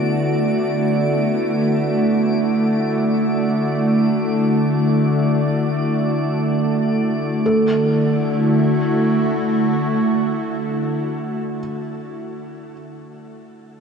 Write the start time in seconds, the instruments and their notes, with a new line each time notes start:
Already playing: ambient pad D3 A3 B3 E4 F#4, synth drone D3 A3, synth texture D5 D7
7.44 ambient pad D3, synth drone D3 A3, felt piano A4
7.61 ambient pad A3
7.79 ambient pad E4
7.96 ambient pad F#4